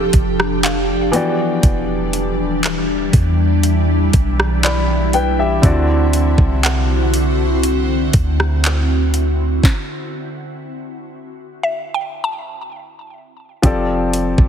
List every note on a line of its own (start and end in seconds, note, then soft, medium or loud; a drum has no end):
0.00 1.09 F3 medium
0.00 1.10 F3 medium
0.00 1.09 C4 medium
0.00 5.59 D4 medium
0.00 1.10 G4 medium
0.00 1.10 A4 medium
0.00 1.11 D5 medium
0.13 1.10 F1 loud
0.13 kick medium
0.13 closed hi-hat medium
0.40 cross-stick loud
0.63 1.60 F5 medium
0.63 clap loud
0.63 closed hi-hat medium
1.12 5.09 E3 medium
1.12 5.59 E3 medium
1.12 5.59 G3 medium
1.12 5.09 B3 medium
1.12 4.60 F#4 medium
1.12 4.60 G4 medium
1.12 closed hi-hat medium
1.16 4.61 D5 medium
1.63 3.09 E1 loud
1.63 kick loud
1.63 closed hi-hat medium
2.13 closed hi-hat medium
2.63 clap loud
2.63 closed hi-hat medium
3.13 4.10 E2 loud
3.13 9.59 E4 medium
3.13 kick medium
3.13 closed hi-hat medium
3.63 closed hi-hat medium
4.13 5.60 B1 loud
4.13 kick medium
4.13 closed hi-hat medium
4.40 cross-stick loud
4.63 5.11 D5 medium
4.63 5.11 B5 medium
4.63 clap loud
4.63 closed hi-hat medium
5.13 5.38 B4 medium
5.13 5.37 G5 medium
5.13 closed hi-hat medium
5.39 5.87 G4 medium
5.39 5.86 E5 medium
5.62 6.36 D2 loud
5.62 9.59 D3 medium
5.62 9.59 C4 medium
5.62 9.60 E4 medium
5.62 9.59 F#4 medium
5.62 9.60 F#4 medium
5.62 kick loud
5.62 closed hi-hat medium
5.66 9.61 D5 medium
6.13 closed hi-hat medium
6.38 8.09 C2 loud
6.38 kick loud
6.63 8.38 F#5 medium
6.63 clap loud
6.63 closed hi-hat medium
7.14 closed hi-hat medium
7.63 closed hi-hat medium
8.13 9.60 D2 loud
8.13 kick loud
8.13 closed hi-hat medium
8.40 cross-stick medium
8.64 clap loud
8.64 closed hi-hat medium
9.14 closed hi-hat medium
9.64 kick loud
9.64 snare medium
11.63 13.38 E5 medium
11.94 13.66 G5 medium
12.24 13.93 A5 medium
13.62 14.36 F1 loud
13.62 14.48 F3 medium
13.62 14.48 G3 medium
13.62 14.48 C4 medium
13.62 14.48 D4 medium
13.62 14.48 G4 medium
13.62 14.48 A4 medium
13.62 kick loud
13.62 closed hi-hat medium
13.67 14.48 D5 medium
14.13 closed hi-hat medium
14.38 14.48 F1 loud
14.38 kick loud